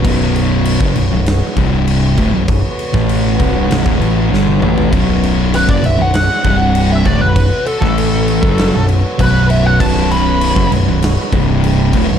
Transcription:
<<
  \new Staff \with { instrumentName = "Lead electric guitar" } { \time 4/4 \key b \minor \tempo 4 = 98 r1 | r1 | r4 b'16 d''16 e''16 fis''4. e''16 d''16 b'16~ | b'8 a'2 r8 b'8 e''16 fis''16 |
a''8 b''4 r2 r8 | }
  \new Staff \with { instrumentName = "Harmonium" } { \time 4/4 \key b \minor <b fis' cis''>2~ <b fis' cis''>8 <c g d'>4 <b fis' cis''>8~ | <b fis' cis''>1 | <b fis' cis''>2~ <b fis' cis''>8 <c g d'>4 <b fis' cis''>8~ | <b fis' cis''>8. <a e' b'>4 <b fis' cis''>2~ <b fis' cis''>16~ |
<b fis' cis''>2~ <b fis' cis''>8 <c g d'>4 <b fis' cis''>8 | }
  \new Staff \with { instrumentName = "Distorted electric guitar" } { \clef bass \time 4/4 \key b \minor <b,, fis, b,>4~ <b,, fis, b,>16 <fis, cis>16 <b,, fis,>16 <b,, fis,>8 r16 <c, g, c>4 <d, a,>16 <b,, fis,>16~ | <b,, fis,>16 r8 <a, e a>8. <c, g, c>8 <b,, fis,>16 <d, a,>16 <a, e a>8 <g, d g>8 <a, e a>8 | <b,, fis, b,>4~ <b,, fis, b,>16 <fis, cis>16 <b,, fis,>16 <b,, fis,>8 r16 <c, g, c>4 <d, a,>16 <b,, fis,>16~ | <b,, fis,>16 r8 <a, e a>4 <fis, cis fis>8 <b,, fis,>8 r16 <b,, fis, b,>4 |
<b,, fis, b,>4~ <b,, fis, b,>16 <fis, cis>16 <b,, fis,>16 <b,, fis,>8 r16 <c, g, c>4 <d, a,>16 <b,, fis,>16 | }
  \new Staff \with { instrumentName = "Distorted electric guitar" } { \clef bass \time 4/4 \key b \minor <b,, fis, b,>4~ <b,, fis, b,>16 <fis, cis>16 <b,, fis,>16 <b,, fis,>8 r16 <c, g, c>4 <d, a,>16 <b,, fis,>16~ | <b,, fis,>16 r8 <a, e a>8. <c, g, c>8 <b,, fis,>16 <d, a,>16 <a, e a>8 <g, d g>8 <a, e a>8 | <b,, fis, b,>4~ <b,, fis, b,>16 <fis, cis>16 <b,, fis,>16 <b,, fis,>8 r16 <c, g, c>4 <d, a,>16 <b,, fis,>16~ | <b,, fis,>16 r8 <a, e a>4 <fis, cis fis>8 <b,, fis,>8 r16 <b,, fis, b,>4 |
<b,, fis, b,>4~ <b,, fis, b,>16 <fis, cis>16 <b,, fis,>16 <b,, fis,>8 r16 <c, g, c>4 <d, a,>16 <b,, fis,>16 | }
  \new Staff \with { instrumentName = "Picked electric bass" } { \clef bass \time 4/4 \key b \minor b,,,4~ b,,,16 fis,,16 b,,,16 b,,,8 r16 c,,4 d,,16 b,,,16~ | b,,,16 r8 a,,8. c,,8 b,,,16 d,,16 a,,8 g,,8 a,,8 | b,,,4~ b,,,16 fis,,16 b,,,16 b,,,8 r16 c,,4 d,,16 b,,,16~ | b,,,16 r8 a,,4 fis,,8 b,,,8 r16 b,,,4 |
b,,,4~ b,,,16 fis,,16 b,,,16 b,,,8 r16 c,,4 d,,16 b,,,16 | }
  \new DrumStaff \with { instrumentName = "Drums" } \drummode { \time 4/4 <cymc bd>8 cymc8 cymc16 bd16 cymc8 <cymc sn>8 <cymc bd>8 cymc8 <cymc bd>8 | <cymc bd>8 cymc16 <bd sn>16 cymc8 <cymc bd>8 <cymc sn>16 bd16 cymc8 sn16 tommh16 toml16 tomfh16 | <cymc bd>8 cymc8 cymc16 bd16 cymc8 <cymc sn>8 <cymc bd>8 cymc8 <cymc bd>8 | <cymc bd>8 cymc16 <bd sn>16 cymc8 cymc16 bd16 <cymc sn>8 cymc8 <cymc bd>8 cymc8 |
<cymc bd>8 cymc8 cymc16 bd16 cymc8 <cymc sn>8 <cymc bd>8 cymc8 <cymc bd>8 | }
>>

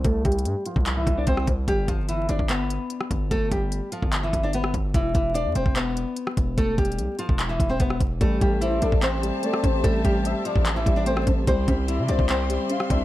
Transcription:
<<
  \new Staff \with { instrumentName = "String section" } { \time 4/4 \key a \minor \tempo 4 = 147 r1 | r1 | r1 | r1 |
r1 | <g' c'' e'' a''>1~ | <g' c'' e'' a''>1 | <g' d'' e'' c'''>1 | }
  \new Staff \with { instrumentName = "Soft synth lead" } { \time 4/4 \key a \minor r1 | r1 | r1 | r1 |
r1 | r4 c''8 a'8 r4 d''8 c''8 | r4 e''8 d''8 r2 | r4 e''8 c''8 r4 f''8 e''8 | }
  \new Staff \with { instrumentName = "Nylon-string guitar" } { \time 4/4 \key a \minor <a a'>8 <g g'>4 <f f'>8. <e e'>8 <d' d''>16 <c' c''>8 r8 | <g g'>8 <f f'>8 <e e'>8 <d' d''>8 <b b'>2 | <a a'>8 <g g'>4 <f f'>8. <e e'>8 <d' d''>16 <b b'>8 r8 | <e e'>8 <e e'>8 <d' d''>8 <c' c''>8 <b b'>2 |
<a a'>8 <g g'>4 <f f'>8. <e e'>8 <c' c''>16 <b b'>8 r8 | <a a'>8 <g g'>8 <e e'>8 <d' d''>8 <c' c''>2 | <a a'>8 <g g'>4 <f f'>8. <e e'>8 <d' d''>16 <c' c''>8 r8 | <c' c''>8 <g g'>8 <e e'>8 <d' d''>8 <c' c''>2 | }
  \new Staff \with { instrumentName = "Grand piano" } { \time 4/4 \key a \minor r1 | r1 | r1 | r1 |
r1 | g8 a2 g8 a8 c'8 | g8 a2 g8 a8 c'8 | g8 c'2 g8 c'8 d'8 | }
  \new Staff \with { instrumentName = "808-style bass" } { \clef bass \time 4/4 \key a \minor c,8 c,8 g,16 r8 c,8. c,8 c,8 c,8 | g,,8 g,,4 g,,16 g,,4 r8. g,,8 | g,,8 g,,8. r8 g,,8. g,,4 g,,8 | e,,8 e,,8. e,16 e,,16 e,,4 r8. e,,8 |
e,,8 e,,8 b,,16 r8 e,,8. e,,8 e,,8 e,,8 | a,,8 a,,4 a,,16 a,,4 r8. a,,8 | a,,8 a,,8. r8 a,,8. a,,4 a,,8 | c,8 c,8. c16 c,16 c,4 r8. c,8 | }
  \new DrumStaff \with { instrumentName = "Drums" } \drummode { \time 4/4 \tuplet 3/2 { <hh bd>16 r16 r16 <hh bd>16 hh16 hh16 } hh8 hh16 bd16 <hc hh>8 <hh bd>8 <hh bd>16 ss16 <hh bd>8 | <hh bd>8 <hh bd>8 hh8 hh16 bd16 <hc hh>8 hh8 hh16 ss16 <hh bd>8 | <hh bd>8 <hh bd>8 hh8 hh16 bd16 <hc hh>8 <hh bd>8 hh16 ss16 <hh bd>8 | <hh bd>8 <hh bd>8 hh8 hh16 bd16 <hc hh>8 hh8 hh16 ss16 <hh bd>8 |
\tuplet 3/2 { <hh bd>16 r16 r16 <hh bd>16 hh16 hh16 } hh8 hh16 bd16 <hc hh>8 <hh bd>8 <hh bd>16 ss16 <hh bd>8 | <hh bd>8 <hh bd>8 hh8 hh16 bd16 <hc hh>8 hh8 hh16 ss16 <hh bd>8 | <hh bd>8 <hh bd>8 hh8 hh16 bd16 <hc hh>8 <hh bd>8 hh16 ss16 <hh bd>8 | <hh bd>8 <hh bd>8 hh8 hh16 bd16 <hc hh>8 hh8 hh16 ss16 <hh bd>8 | }
>>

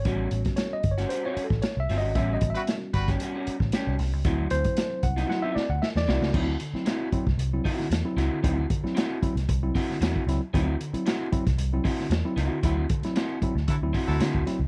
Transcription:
<<
  \new Staff \with { instrumentName = "Horn section" } { \time 4/4 \key d \major \tempo 4 = 114 r1 | r8. <g fis' b'>16 r8 <g fis' b'>8 r2 | r1 | r1 |
r1 | r1 | r2 <fis e' a'>16 r8 <fis e' a'>8 r8. | }
  \new Staff \with { instrumentName = "Clean electric guitar" } { \time 4/4 \key d \major <g cis' fis'>8 r4 r16 <g cis' fis'>16 <g cis' fis'>16 <g cis' fis'>8 r8. <g cis' fis'>8 | <g cis' fis'>8 r4 r16 <g cis' g'>16 <g cis' fis'>16 <g cis' fis'>8 r16 <g cis' g'>8 r8 | <c' e' fis'>8 r4 r16 <c' e' fis'>16 <c' e' fis'>16 <c' e' fis'>8 r8. <c' e' fis'>8 | <c' e' fis'>8 r8 <c' e' fis'>8 r4 <c' e' fis'>8 r8 <c' e' fis'>8 |
<c' e' fis'>8 r8 <c' e' fis'>8 r4 <c' e' fis'>8 <c' e' fis'>8 r8 | <c' e' fis'>8 r8 <c' e' fis'>8 r4 <c' e' fis'>8 r8 <c' e' fis'>8 | <c' e' fis'>8 r8 <c' e' fis'>8 r4 <c' e' fis'>8 <c' e' fis'>8 r8 | }
  \new Staff \with { instrumentName = "Tine electric piano" } { \time 4/4 \key d \major cis''8. r16 \tuplet 3/2 { cis''8 dis''8 cis''8 c''8 cis''8 a'8 cis''8 e''8 dis''8 } | \tuplet 3/2 { e''8 dis''8 e''8~ } e''16 r2 r8. | r8 c''4 fis''8 fis''16 e''16 d''16 fis''16 e''16 d''8. | <fis c' e'>16 r8 <fis c' e'>16 r8 <fis c' e'>16 r8 <fis c' e'>16 r8. <fis c' e'>16 r8 |
<fis c' e'>16 r8 <fis c' e'>16 r8 <fis c' e'>16 r8 <fis c' e'>16 r4 <fis c' e'>16 r16 | <fis c' e'>16 r8 <fis c' e'>16 r8 <fis c' e'>16 r8 <fis c' e'>16 r8. <fis c' e'>16 r8 | <fis c' e'>16 r8 <fis c' e'>16 r8 <fis c' e'>16 r8 <fis c' e'>16 r4 <fis c' e'>16 r16 | }
  \new Staff \with { instrumentName = "Tine electric piano" } { \clef bass \time 4/4 \key d \major <g b cis' fis'>4. r2 r8 | <g b cis' fis'>1 | <fis c' e'>2 <fis c' e'>8 r4. | r8 d16 r2 d16 r8. d16 |
r8 d16 r2 d16 r4 | r8 d16 r2 d16 r8. d16 | r8 d16 r2 d16 r4 | }
  \new Staff \with { instrumentName = "Picked electric bass" } { \clef bass \time 4/4 \key d \major a,,8 a,,16 r8. g,,8 r8. a,,16 r16 c,16 g,,16 gis,,16 | a,,8 a,,16 r8. g,,8 r8. a,,16 r16 c,16 c,16 cis,16 | d,8 d,16 r8. c,8 r8. d,16 r16 e,16 c,16 cis,16 | d,8 r4 r16 c,16 c,8 r8 e,16 r16 cis,16 r16 |
d,8 r4 r16 c,16 c,8 r8 e,16 r16 cis,16 r16 | d,8 r4 r16 c,16 c,8 r8 e,16 r16 cis,16 r16 | d,8 r4 r16 d,16 d16 d,16 r16 d,16 d16 d,16 r16 cis,16 | }
  \new DrumStaff \with { instrumentName = "Drums" } \drummode { \time 4/4 <hh bd>8 hh16 <hh bd sn>16 <hh sn>8 <hh bd>16 <hh sn>16 hh8 hh16 <bd sn>16 <hh sn>8 <hho sn>8 | <hh bd>8 <hh bd>16 hh16 <hh sn>8 <hh bd>16 <hh bd sn>16 hh8 hh16 <bd sn>16 <hh sn>8 <hho sn>8 | <hh bd>8 hh16 <hh bd>16 <hh sn>8 <hh bd>16 <hh sn>16 sn8 sn8 sn16 sn16 sn16 sn16 | <cymc bd>8 hh16 sn16 <hh sn>8 <hh bd>16 <bd sn>16 hh8 <hho bd>16 sn16 <hh sn>8 <hh sn>8 |
<hh bd>8 <hh bd>16 sn16 <hh sn>8 <hh bd>16 <hh sn>16 <hh bd>8 <hho bd>16 sn16 <hh sn>16 bd16 <hh sn>8 | <hh bd>8 hh16 hh16 <hh sn>8 <hh bd>16 <hh bd sn>16 hh8 <hho bd>16 sn16 <hh sn>8 <hh sn>8 | <hh bd>8 <hh bd>16 <hh sn>16 <hh sn>8 <hh bd>16 sn16 <hh bd>8 <hho bd>16 sn16 <hh sn>16 bd16 <hh sn>8 | }
>>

